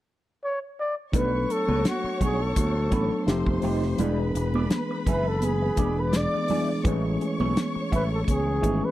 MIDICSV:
0, 0, Header, 1, 9, 480
1, 0, Start_track
1, 0, Tempo, 714286
1, 760, Time_signature, 4, 2, 24, 8
1, 5988, End_track
2, 0, Start_track
2, 0, Title_t, "Violin section"
2, 0, Program_c, 0, 48
2, 755, Note_on_c, 0, 85, 83
2, 756, Note_on_c, 0, 73, 73
2, 2171, Note_off_c, 0, 85, 0
2, 2172, Note_off_c, 0, 73, 0
2, 2196, Note_on_c, 0, 72, 66
2, 2198, Note_on_c, 0, 84, 70
2, 2669, Note_off_c, 0, 72, 0
2, 2670, Note_off_c, 0, 84, 0
2, 2677, Note_on_c, 0, 83, 72
2, 2678, Note_on_c, 0, 71, 75
2, 4092, Note_off_c, 0, 83, 0
2, 4093, Note_off_c, 0, 71, 0
2, 4117, Note_on_c, 0, 74, 70
2, 4118, Note_on_c, 0, 86, 70
2, 4589, Note_off_c, 0, 74, 0
2, 4589, Note_off_c, 0, 86, 0
2, 4591, Note_on_c, 0, 73, 63
2, 4594, Note_on_c, 0, 85, 80
2, 5988, Note_off_c, 0, 73, 0
2, 5988, Note_off_c, 0, 85, 0
2, 5988, End_track
3, 0, Start_track
3, 0, Title_t, "Flugelhorn"
3, 0, Program_c, 1, 56
3, 294, Note_on_c, 1, 73, 88
3, 399, Note_off_c, 1, 73, 0
3, 536, Note_on_c, 1, 74, 90
3, 641, Note_off_c, 1, 74, 0
3, 779, Note_on_c, 1, 71, 92
3, 1018, Note_on_c, 1, 69, 84
3, 1028, Note_off_c, 1, 71, 0
3, 1249, Note_off_c, 1, 69, 0
3, 1263, Note_on_c, 1, 66, 81
3, 1476, Note_off_c, 1, 66, 0
3, 1504, Note_on_c, 1, 68, 80
3, 1629, Note_on_c, 1, 69, 69
3, 1639, Note_off_c, 1, 68, 0
3, 2450, Note_off_c, 1, 69, 0
3, 3420, Note_on_c, 1, 71, 78
3, 3547, Note_on_c, 1, 69, 67
3, 3557, Note_off_c, 1, 71, 0
3, 3658, Note_on_c, 1, 68, 69
3, 3668, Note_off_c, 1, 69, 0
3, 4033, Note_on_c, 1, 71, 80
3, 4043, Note_off_c, 1, 68, 0
3, 4145, Note_on_c, 1, 74, 92
3, 4155, Note_off_c, 1, 71, 0
3, 4502, Note_off_c, 1, 74, 0
3, 5346, Note_on_c, 1, 71, 89
3, 5398, Note_off_c, 1, 71, 0
3, 5471, Note_on_c, 1, 69, 68
3, 5516, Note_off_c, 1, 69, 0
3, 5574, Note_on_c, 1, 68, 86
3, 5944, Note_on_c, 1, 71, 77
3, 5954, Note_off_c, 1, 68, 0
3, 5988, Note_off_c, 1, 71, 0
3, 5988, End_track
4, 0, Start_track
4, 0, Title_t, "Clean electric guitar"
4, 0, Program_c, 2, 27
4, 764, Note_on_c, 2, 57, 65
4, 766, Note_on_c, 2, 62, 80
4, 770, Note_on_c, 2, 66, 71
4, 770, Note_on_c, 2, 71, 76
4, 884, Note_off_c, 2, 71, 0
4, 886, Note_off_c, 2, 66, 0
4, 888, Note_off_c, 2, 62, 0
4, 897, Note_off_c, 2, 57, 0
4, 1133, Note_on_c, 2, 71, 51
4, 1135, Note_on_c, 2, 66, 52
4, 1136, Note_on_c, 2, 62, 45
4, 1140, Note_on_c, 2, 57, 42
4, 1222, Note_off_c, 2, 71, 0
4, 1223, Note_off_c, 2, 62, 0
4, 1223, Note_off_c, 2, 66, 0
4, 1226, Note_off_c, 2, 57, 0
4, 1485, Note_on_c, 2, 57, 73
4, 1489, Note_on_c, 2, 62, 69
4, 1491, Note_on_c, 2, 66, 73
4, 1493, Note_on_c, 2, 73, 83
4, 1615, Note_off_c, 2, 66, 0
4, 1617, Note_off_c, 2, 73, 0
4, 1618, Note_off_c, 2, 57, 0
4, 1618, Note_off_c, 2, 62, 0
4, 1962, Note_on_c, 2, 57, 63
4, 1965, Note_on_c, 2, 62, 65
4, 1967, Note_on_c, 2, 66, 72
4, 1971, Note_on_c, 2, 71, 75
4, 2092, Note_off_c, 2, 71, 0
4, 2096, Note_off_c, 2, 57, 0
4, 2096, Note_off_c, 2, 66, 0
4, 2098, Note_off_c, 2, 62, 0
4, 2440, Note_on_c, 2, 57, 63
4, 2446, Note_on_c, 2, 63, 80
4, 2447, Note_on_c, 2, 67, 71
4, 2450, Note_on_c, 2, 72, 76
4, 2567, Note_off_c, 2, 72, 0
4, 2569, Note_off_c, 2, 67, 0
4, 2573, Note_off_c, 2, 63, 0
4, 2576, Note_off_c, 2, 57, 0
4, 2683, Note_on_c, 2, 59, 60
4, 2685, Note_on_c, 2, 64, 67
4, 2688, Note_on_c, 2, 74, 77
4, 2690, Note_on_c, 2, 68, 75
4, 2811, Note_off_c, 2, 74, 0
4, 2814, Note_off_c, 2, 68, 0
4, 2817, Note_off_c, 2, 59, 0
4, 2818, Note_off_c, 2, 64, 0
4, 3061, Note_on_c, 2, 68, 50
4, 3061, Note_on_c, 2, 74, 51
4, 3064, Note_on_c, 2, 64, 47
4, 3069, Note_on_c, 2, 59, 42
4, 3146, Note_off_c, 2, 68, 0
4, 3146, Note_off_c, 2, 74, 0
4, 3148, Note_off_c, 2, 64, 0
4, 3150, Note_off_c, 2, 59, 0
4, 3410, Note_on_c, 2, 59, 67
4, 3415, Note_on_c, 2, 64, 74
4, 3415, Note_on_c, 2, 68, 80
4, 3419, Note_on_c, 2, 76, 81
4, 3536, Note_off_c, 2, 68, 0
4, 3539, Note_off_c, 2, 76, 0
4, 3540, Note_off_c, 2, 59, 0
4, 3540, Note_off_c, 2, 64, 0
4, 3883, Note_on_c, 2, 59, 76
4, 3886, Note_on_c, 2, 64, 74
4, 3887, Note_on_c, 2, 68, 79
4, 3891, Note_on_c, 2, 74, 67
4, 4011, Note_off_c, 2, 74, 0
4, 4014, Note_off_c, 2, 68, 0
4, 4016, Note_off_c, 2, 64, 0
4, 4017, Note_off_c, 2, 59, 0
4, 4368, Note_on_c, 2, 59, 70
4, 4371, Note_on_c, 2, 64, 69
4, 4373, Note_on_c, 2, 68, 78
4, 4374, Note_on_c, 2, 74, 78
4, 4493, Note_off_c, 2, 74, 0
4, 4499, Note_off_c, 2, 59, 0
4, 4499, Note_off_c, 2, 68, 0
4, 4501, Note_off_c, 2, 64, 0
4, 4609, Note_on_c, 2, 57, 53
4, 4611, Note_on_c, 2, 64, 72
4, 4617, Note_on_c, 2, 68, 65
4, 4618, Note_on_c, 2, 73, 66
4, 4732, Note_off_c, 2, 73, 0
4, 4733, Note_off_c, 2, 68, 0
4, 4737, Note_off_c, 2, 64, 0
4, 4740, Note_off_c, 2, 57, 0
4, 4977, Note_on_c, 2, 73, 55
4, 4980, Note_on_c, 2, 68, 46
4, 4983, Note_on_c, 2, 64, 51
4, 4987, Note_on_c, 2, 57, 47
4, 5064, Note_off_c, 2, 73, 0
4, 5065, Note_off_c, 2, 68, 0
4, 5067, Note_off_c, 2, 64, 0
4, 5069, Note_off_c, 2, 57, 0
4, 5320, Note_on_c, 2, 57, 71
4, 5323, Note_on_c, 2, 64, 82
4, 5325, Note_on_c, 2, 68, 70
4, 5328, Note_on_c, 2, 76, 82
4, 5445, Note_off_c, 2, 68, 0
4, 5446, Note_off_c, 2, 76, 0
4, 5448, Note_off_c, 2, 64, 0
4, 5455, Note_off_c, 2, 57, 0
4, 5789, Note_on_c, 2, 57, 65
4, 5796, Note_on_c, 2, 64, 68
4, 5798, Note_on_c, 2, 68, 63
4, 5798, Note_on_c, 2, 73, 83
4, 5924, Note_off_c, 2, 73, 0
4, 5926, Note_off_c, 2, 68, 0
4, 5927, Note_off_c, 2, 64, 0
4, 5929, Note_off_c, 2, 57, 0
4, 5988, End_track
5, 0, Start_track
5, 0, Title_t, "Tine electric piano"
5, 0, Program_c, 3, 4
5, 754, Note_on_c, 3, 54, 63
5, 759, Note_on_c, 3, 57, 58
5, 764, Note_on_c, 3, 59, 61
5, 770, Note_on_c, 3, 62, 57
5, 774, Note_on_c, 3, 69, 72
5, 893, Control_c, 3, 64, 127
5, 1342, Note_off_c, 3, 54, 0
5, 1344, Note_off_c, 3, 57, 0
5, 1347, Note_off_c, 3, 59, 0
5, 1350, Note_off_c, 3, 62, 0
5, 1352, Note_off_c, 3, 69, 0
5, 1949, Note_on_c, 3, 54, 73
5, 1955, Note_on_c, 3, 57, 60
5, 1961, Note_on_c, 3, 59, 63
5, 1965, Note_on_c, 3, 62, 64
5, 1973, Note_on_c, 3, 69, 76
5, 2189, Note_off_c, 3, 57, 0
5, 2192, Note_on_c, 3, 53, 83
5, 2195, Note_off_c, 3, 54, 0
5, 2197, Note_on_c, 3, 57, 70
5, 2201, Note_off_c, 3, 59, 0
5, 2203, Note_off_c, 3, 62, 0
5, 2204, Note_on_c, 3, 60, 73
5, 2207, Note_off_c, 3, 69, 0
5, 2208, Control_c, 3, 64, 0
5, 2209, Note_on_c, 3, 63, 77
5, 2213, Note_on_c, 3, 67, 94
5, 2312, Control_c, 3, 64, 127
5, 2392, Note_off_c, 3, 53, 0
5, 2395, Note_off_c, 3, 57, 0
5, 2399, Note_off_c, 3, 60, 0
5, 2401, Note_off_c, 3, 63, 0
5, 2403, Note_off_c, 3, 67, 0
5, 2434, Note_on_c, 3, 53, 63
5, 2439, Note_on_c, 3, 57, 57
5, 2444, Note_on_c, 3, 60, 58
5, 2449, Note_on_c, 3, 63, 64
5, 2454, Note_on_c, 3, 67, 63
5, 2589, Note_off_c, 3, 53, 0
5, 2592, Note_off_c, 3, 57, 0
5, 2594, Note_off_c, 3, 60, 0
5, 2597, Note_off_c, 3, 63, 0
5, 2599, Note_off_c, 3, 67, 0
5, 2676, Note_on_c, 3, 52, 76
5, 2679, Note_on_c, 3, 56, 74
5, 2683, Note_on_c, 3, 59, 69
5, 2689, Note_on_c, 3, 62, 67
5, 2690, Control_c, 3, 64, 0
5, 2696, Note_on_c, 3, 68, 82
5, 2812, Control_c, 3, 64, 127
5, 3263, Note_off_c, 3, 52, 0
5, 3265, Note_off_c, 3, 56, 0
5, 3266, Note_off_c, 3, 59, 0
5, 3269, Note_off_c, 3, 62, 0
5, 3273, Note_off_c, 3, 68, 0
5, 3873, Note_on_c, 3, 52, 73
5, 3880, Note_on_c, 3, 56, 62
5, 3885, Note_on_c, 3, 59, 64
5, 3889, Note_on_c, 3, 62, 59
5, 3895, Note_on_c, 3, 68, 86
5, 4169, Note_off_c, 3, 52, 0
5, 4173, Note_off_c, 3, 56, 0
5, 4175, Note_off_c, 3, 59, 0
5, 4177, Note_off_c, 3, 62, 0
5, 4180, Note_off_c, 3, 68, 0
5, 4352, Note_on_c, 3, 52, 53
5, 4355, Note_on_c, 3, 56, 48
5, 4364, Note_on_c, 3, 59, 54
5, 4370, Note_on_c, 3, 62, 52
5, 4373, Note_on_c, 3, 68, 53
5, 4508, Note_off_c, 3, 52, 0
5, 4510, Note_off_c, 3, 56, 0
5, 4514, Note_off_c, 3, 59, 0
5, 4517, Note_off_c, 3, 62, 0
5, 4519, Note_off_c, 3, 68, 0
5, 4597, Note_on_c, 3, 52, 86
5, 4601, Note_on_c, 3, 56, 67
5, 4607, Note_on_c, 3, 57, 67
5, 4610, Control_c, 3, 64, 0
5, 4611, Note_on_c, 3, 60, 55
5, 4616, Note_on_c, 3, 68, 87
5, 4652, Note_on_c, 3, 61, 70
5, 4653, Note_off_c, 3, 60, 0
5, 4738, Control_c, 3, 64, 127
5, 5183, Note_off_c, 3, 52, 0
5, 5185, Note_off_c, 3, 56, 0
5, 5188, Note_off_c, 3, 57, 0
5, 5192, Note_off_c, 3, 68, 0
5, 5211, Note_off_c, 3, 61, 0
5, 5792, Note_on_c, 3, 52, 71
5, 5796, Note_on_c, 3, 56, 65
5, 5802, Note_on_c, 3, 57, 64
5, 5807, Note_on_c, 3, 61, 67
5, 5812, Note_on_c, 3, 68, 80
5, 5988, Note_off_c, 3, 52, 0
5, 5988, Note_off_c, 3, 56, 0
5, 5988, Note_off_c, 3, 57, 0
5, 5988, Note_off_c, 3, 61, 0
5, 5988, Note_off_c, 3, 68, 0
5, 5988, End_track
6, 0, Start_track
6, 0, Title_t, "Fingered electric bass"
6, 0, Program_c, 4, 33
6, 765, Note_on_c, 4, 35, 69
6, 973, Note_off_c, 4, 35, 0
6, 1132, Note_on_c, 4, 37, 85
6, 1228, Note_off_c, 4, 37, 0
6, 1487, Note_on_c, 4, 35, 78
6, 1694, Note_off_c, 4, 35, 0
6, 1726, Note_on_c, 4, 38, 79
6, 1934, Note_off_c, 4, 38, 0
6, 1964, Note_on_c, 4, 33, 82
6, 2076, Note_off_c, 4, 33, 0
6, 2202, Note_on_c, 4, 29, 86
6, 2315, Note_off_c, 4, 29, 0
6, 2332, Note_on_c, 4, 29, 74
6, 2428, Note_off_c, 4, 29, 0
6, 2441, Note_on_c, 4, 29, 77
6, 2651, Note_off_c, 4, 29, 0
6, 2683, Note_on_c, 4, 28, 82
6, 2892, Note_off_c, 4, 28, 0
6, 2923, Note_on_c, 4, 28, 82
6, 3132, Note_off_c, 4, 28, 0
6, 3404, Note_on_c, 4, 30, 81
6, 3822, Note_off_c, 4, 30, 0
6, 3883, Note_on_c, 4, 28, 84
6, 4205, Note_off_c, 4, 28, 0
6, 4603, Note_on_c, 4, 33, 78
6, 4812, Note_off_c, 4, 33, 0
6, 4973, Note_on_c, 4, 35, 80
6, 5068, Note_off_c, 4, 35, 0
6, 5328, Note_on_c, 4, 33, 83
6, 5534, Note_off_c, 4, 33, 0
6, 5567, Note_on_c, 4, 37, 74
6, 5774, Note_off_c, 4, 37, 0
6, 5806, Note_on_c, 4, 32, 76
6, 5916, Note_off_c, 4, 32, 0
6, 5988, End_track
7, 0, Start_track
7, 0, Title_t, "Muted clean electric guitar strokes"
7, 892, Note_on_c, 9, 29, 49
7, 960, Note_off_c, 9, 29, 0
7, 1005, Note_on_c, 9, 29, 32
7, 1072, Note_off_c, 9, 29, 0
7, 1243, Note_on_c, 9, 29, 34
7, 1311, Note_off_c, 9, 29, 0
7, 1381, Note_on_c, 9, 29, 43
7, 1449, Note_off_c, 9, 29, 0
7, 1619, Note_on_c, 9, 29, 38
7, 1686, Note_off_c, 9, 29, 0
7, 1859, Note_on_c, 9, 29, 29
7, 1926, Note_off_c, 9, 29, 0
7, 2209, Note_on_c, 9, 29, 35
7, 2276, Note_off_c, 9, 29, 0
7, 2332, Note_on_c, 9, 29, 35
7, 2399, Note_off_c, 9, 29, 0
7, 2575, Note_on_c, 9, 29, 39
7, 2642, Note_off_c, 9, 29, 0
7, 2819, Note_on_c, 9, 29, 42
7, 2886, Note_off_c, 9, 29, 0
7, 2932, Note_on_c, 9, 29, 37
7, 2999, Note_off_c, 9, 29, 0
7, 3170, Note_on_c, 9, 29, 28
7, 3237, Note_off_c, 9, 29, 0
7, 3299, Note_on_c, 9, 29, 38
7, 3366, Note_off_c, 9, 29, 0
7, 3542, Note_on_c, 9, 29, 40
7, 3609, Note_off_c, 9, 29, 0
7, 3777, Note_on_c, 9, 29, 26
7, 3845, Note_off_c, 9, 29, 0
7, 4019, Note_on_c, 9, 29, 36
7, 4086, Note_off_c, 9, 29, 0
7, 4126, Note_on_c, 9, 29, 37
7, 4193, Note_off_c, 9, 29, 0
7, 4261, Note_on_c, 9, 29, 33
7, 4329, Note_off_c, 9, 29, 0
7, 4501, Note_on_c, 9, 29, 32
7, 4569, Note_off_c, 9, 29, 0
7, 4740, Note_on_c, 9, 29, 34
7, 4807, Note_off_c, 9, 29, 0
7, 4849, Note_on_c, 9, 29, 42
7, 4916, Note_off_c, 9, 29, 0
7, 5211, Note_on_c, 9, 29, 31
7, 5278, Note_off_c, 9, 29, 0
7, 5448, Note_on_c, 9, 29, 44
7, 5516, Note_off_c, 9, 29, 0
7, 5688, Note_on_c, 9, 29, 34
7, 5756, Note_off_c, 9, 29, 0
7, 5932, Note_on_c, 9, 29, 31
7, 5988, Note_off_c, 9, 29, 0
7, 5988, End_track
8, 0, Start_track
8, 0, Title_t, "Muted fingered electric bass strokes"
8, 1372, Note_on_c, 9, 29, 40
8, 1439, Note_off_c, 9, 29, 0
8, 5215, Note_on_c, 9, 29, 41
8, 5282, Note_off_c, 9, 29, 0
8, 5988, End_track
9, 0, Start_track
9, 0, Title_t, "Drums"
9, 762, Note_on_c, 9, 36, 102
9, 762, Note_on_c, 9, 62, 28
9, 762, Note_on_c, 9, 64, 67
9, 766, Note_on_c, 9, 42, 78
9, 830, Note_off_c, 9, 36, 0
9, 830, Note_off_c, 9, 62, 0
9, 830, Note_off_c, 9, 64, 0
9, 833, Note_off_c, 9, 42, 0
9, 1009, Note_on_c, 9, 42, 60
9, 1076, Note_off_c, 9, 42, 0
9, 1131, Note_on_c, 9, 63, 66
9, 1198, Note_off_c, 9, 63, 0
9, 1240, Note_on_c, 9, 62, 29
9, 1240, Note_on_c, 9, 63, 57
9, 1243, Note_on_c, 9, 42, 84
9, 1246, Note_on_c, 9, 38, 97
9, 1307, Note_off_c, 9, 62, 0
9, 1307, Note_off_c, 9, 63, 0
9, 1310, Note_off_c, 9, 42, 0
9, 1313, Note_off_c, 9, 38, 0
9, 1484, Note_on_c, 9, 36, 76
9, 1485, Note_on_c, 9, 62, 25
9, 1485, Note_on_c, 9, 64, 58
9, 1486, Note_on_c, 9, 42, 68
9, 1551, Note_off_c, 9, 36, 0
9, 1552, Note_off_c, 9, 62, 0
9, 1552, Note_off_c, 9, 64, 0
9, 1553, Note_off_c, 9, 42, 0
9, 1721, Note_on_c, 9, 62, 23
9, 1721, Note_on_c, 9, 63, 51
9, 1722, Note_on_c, 9, 42, 86
9, 1723, Note_on_c, 9, 36, 84
9, 1788, Note_off_c, 9, 62, 0
9, 1788, Note_off_c, 9, 63, 0
9, 1789, Note_off_c, 9, 42, 0
9, 1790, Note_off_c, 9, 36, 0
9, 1960, Note_on_c, 9, 42, 66
9, 1961, Note_on_c, 9, 36, 71
9, 1966, Note_on_c, 9, 63, 41
9, 2027, Note_off_c, 9, 42, 0
9, 2028, Note_off_c, 9, 36, 0
9, 2033, Note_off_c, 9, 63, 0
9, 2203, Note_on_c, 9, 42, 72
9, 2205, Note_on_c, 9, 38, 91
9, 2270, Note_off_c, 9, 42, 0
9, 2272, Note_off_c, 9, 38, 0
9, 2328, Note_on_c, 9, 36, 84
9, 2334, Note_on_c, 9, 63, 37
9, 2395, Note_off_c, 9, 36, 0
9, 2401, Note_off_c, 9, 63, 0
9, 2432, Note_on_c, 9, 46, 60
9, 2441, Note_on_c, 9, 62, 25
9, 2441, Note_on_c, 9, 64, 56
9, 2499, Note_off_c, 9, 46, 0
9, 2508, Note_off_c, 9, 62, 0
9, 2508, Note_off_c, 9, 64, 0
9, 2570, Note_on_c, 9, 38, 28
9, 2637, Note_off_c, 9, 38, 0
9, 2677, Note_on_c, 9, 64, 64
9, 2678, Note_on_c, 9, 42, 85
9, 2744, Note_off_c, 9, 64, 0
9, 2745, Note_off_c, 9, 42, 0
9, 2925, Note_on_c, 9, 42, 64
9, 2993, Note_off_c, 9, 42, 0
9, 3049, Note_on_c, 9, 63, 66
9, 3117, Note_off_c, 9, 63, 0
9, 3161, Note_on_c, 9, 62, 33
9, 3161, Note_on_c, 9, 63, 65
9, 3162, Note_on_c, 9, 42, 83
9, 3164, Note_on_c, 9, 38, 99
9, 3229, Note_off_c, 9, 42, 0
9, 3229, Note_off_c, 9, 62, 0
9, 3229, Note_off_c, 9, 63, 0
9, 3231, Note_off_c, 9, 38, 0
9, 3404, Note_on_c, 9, 36, 75
9, 3406, Note_on_c, 9, 42, 67
9, 3409, Note_on_c, 9, 62, 24
9, 3409, Note_on_c, 9, 64, 55
9, 3471, Note_off_c, 9, 36, 0
9, 3474, Note_off_c, 9, 42, 0
9, 3477, Note_off_c, 9, 62, 0
9, 3477, Note_off_c, 9, 64, 0
9, 3641, Note_on_c, 9, 42, 86
9, 3641, Note_on_c, 9, 63, 53
9, 3708, Note_off_c, 9, 42, 0
9, 3709, Note_off_c, 9, 63, 0
9, 3877, Note_on_c, 9, 42, 62
9, 3880, Note_on_c, 9, 36, 68
9, 3892, Note_on_c, 9, 62, 20
9, 3892, Note_on_c, 9, 63, 47
9, 3944, Note_off_c, 9, 42, 0
9, 3947, Note_off_c, 9, 36, 0
9, 3959, Note_off_c, 9, 62, 0
9, 3959, Note_off_c, 9, 63, 0
9, 4118, Note_on_c, 9, 42, 83
9, 4121, Note_on_c, 9, 38, 89
9, 4127, Note_on_c, 9, 62, 35
9, 4186, Note_off_c, 9, 42, 0
9, 4188, Note_off_c, 9, 38, 0
9, 4194, Note_off_c, 9, 62, 0
9, 4267, Note_on_c, 9, 63, 41
9, 4334, Note_off_c, 9, 63, 0
9, 4355, Note_on_c, 9, 46, 62
9, 4367, Note_on_c, 9, 62, 29
9, 4367, Note_on_c, 9, 64, 68
9, 4423, Note_off_c, 9, 46, 0
9, 4435, Note_off_c, 9, 62, 0
9, 4435, Note_off_c, 9, 64, 0
9, 4602, Note_on_c, 9, 36, 105
9, 4604, Note_on_c, 9, 42, 86
9, 4606, Note_on_c, 9, 62, 31
9, 4606, Note_on_c, 9, 64, 65
9, 4669, Note_off_c, 9, 36, 0
9, 4672, Note_off_c, 9, 42, 0
9, 4673, Note_off_c, 9, 62, 0
9, 4673, Note_off_c, 9, 64, 0
9, 4846, Note_on_c, 9, 62, 31
9, 4847, Note_on_c, 9, 42, 62
9, 4913, Note_off_c, 9, 62, 0
9, 4915, Note_off_c, 9, 42, 0
9, 4971, Note_on_c, 9, 63, 71
9, 5038, Note_off_c, 9, 63, 0
9, 5080, Note_on_c, 9, 62, 30
9, 5080, Note_on_c, 9, 63, 58
9, 5086, Note_on_c, 9, 42, 83
9, 5089, Note_on_c, 9, 38, 104
9, 5148, Note_off_c, 9, 62, 0
9, 5148, Note_off_c, 9, 63, 0
9, 5153, Note_off_c, 9, 42, 0
9, 5156, Note_off_c, 9, 38, 0
9, 5325, Note_on_c, 9, 36, 79
9, 5327, Note_on_c, 9, 62, 29
9, 5327, Note_on_c, 9, 64, 51
9, 5328, Note_on_c, 9, 42, 63
9, 5392, Note_off_c, 9, 36, 0
9, 5394, Note_off_c, 9, 62, 0
9, 5394, Note_off_c, 9, 64, 0
9, 5395, Note_off_c, 9, 42, 0
9, 5563, Note_on_c, 9, 36, 83
9, 5564, Note_on_c, 9, 62, 23
9, 5564, Note_on_c, 9, 63, 53
9, 5565, Note_on_c, 9, 42, 79
9, 5630, Note_off_c, 9, 36, 0
9, 5632, Note_off_c, 9, 42, 0
9, 5632, Note_off_c, 9, 62, 0
9, 5632, Note_off_c, 9, 63, 0
9, 5802, Note_on_c, 9, 36, 64
9, 5805, Note_on_c, 9, 42, 60
9, 5811, Note_on_c, 9, 62, 25
9, 5811, Note_on_c, 9, 63, 44
9, 5869, Note_off_c, 9, 36, 0
9, 5872, Note_off_c, 9, 42, 0
9, 5878, Note_off_c, 9, 62, 0
9, 5878, Note_off_c, 9, 63, 0
9, 5988, End_track
0, 0, End_of_file